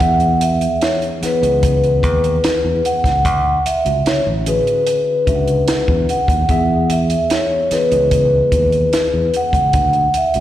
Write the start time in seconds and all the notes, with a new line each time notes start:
Already playing: B4 F#5
0.00 E2 E3 B3 G#4 E5, kick, closed hi-hat
0.20 closed hi-hat
0.41 E5, closed hi-hat
0.61 closed hi-hat
0.81 C#5, snare, closed hi-hat
1.02 closed hi-hat
1.21 E3 B3 G#4 B4 F#5, muted fingered electric bass stroke, snare, closed hi-hat
1.41 C#2 B3 E4 G#4 D#5, closed hi-hat
1.63 kick, closed hi-hat
1.83 closed hi-hat
2.03 D#2, kick, closed hi-hat
2.24 closed hi-hat
2.44 muted fingered electric bass stroke, snare, closed hi-hat
2.65 E2
2.85 F#5, closed hi-hat
3.04 C#2, kick, snare, closed hi-hat
3.25 D2, kick, closed hi-hat
3.66 E5, closed hi-hat
3.85 C#2 D3 C#4 F#4 E5, closed hi-hat
4.06 C#5, muted fingered electric bass stroke, snare, closed hi-hat
4.27 A1
4.45 D3 C#4 F#4 G#4 B4, closed hi-hat
4.67 closed hi-hat
4.87 closed hi-hat
5.27 C#2 C#4 D4 F#4 E5, kick, closed hi-hat
5.35 F#5
5.48 closed hi-hat
5.68 snare, closed hi-hat
5.88 E2, kick
6.09 F#5, closed hi-hat
6.28 D#2, kick, closed hi-hat
6.48 E2 E3 B3 G#4 E5, kick, closed hi-hat
6.90 E5, closed hi-hat
7.10 closed hi-hat
7.30 C#5, snare, closed hi-hat
7.71 E3 B3 G#4 B4 D#5, muted fingered electric bass stroke, snare, closed hi-hat
7.90 C#2 B3 E4 G#4 D#5, closed hi-hat
8.11 kick, closed hi-hat
8.52 D#2, kick, closed hi-hat
8.72 closed hi-hat
8.93 muted fingered electric bass stroke, snare, closed hi-hat
9.14 E2
9.34 F#5, closed hi-hat
9.53 C#2, kick, closed hi-hat
9.73 D2, kick, closed hi-hat
9.93 closed hi-hat
10.14 E5, closed hi-hat
10.34 C#2 D3 C#4 F#4 E5, closed hi-hat